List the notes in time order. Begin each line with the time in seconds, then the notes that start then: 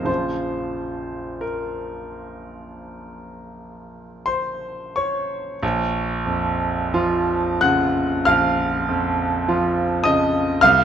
Already playing: C3 D#3 F#3 F4 C5 D#5 F5
0.03 A#1 C#3 F3 F4 C5
1.41 A#4
4.26 C5 C6
4.96 C#5 C#6
5.63 A#1
6.26 F2
6.94 F3 F4
7.61 C#3 F#5 F#6
8.25 A#1 F5 F6
8.89 F2
9.48 F3 F4
10.04 C#3 D#5 D#6
10.61 C2 F5 F6